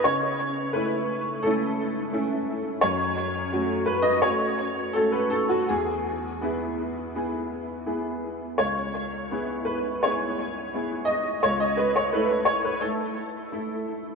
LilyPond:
\new Staff \with { instrumentName = "Upright piano" } { \time 4/4 \key a \lydian \tempo 4 = 85 << { cis''4 b'4 a'4. r8 | cis''4. b'16 dis''16 cis''4 a'16 b'16 a'16 fis'16 | gis'2.~ gis'8 r8 | cis''4. b'8 cis''4. dis''8 |
cis''16 dis''16 b'16 cis''16 b'8 cis''16 b'16 a'4. r8 | } \\ { cis4 <a cis' e'>4 <a cis' e'>4 <a cis' e'>4 | fis,4 <a cis' fis'>4 <a cis' fis'>4 <a cis' fis'>4 | e,4 <b e' gis'>4 <b e' gis'>4 <b e' gis'>4 | cis,4 <b e' gis'>4 <b e' gis'>4 <b e' gis'>4 |
cis,4 <a e' a'>4 <a e'>4 <a e' a'>4 | } >> }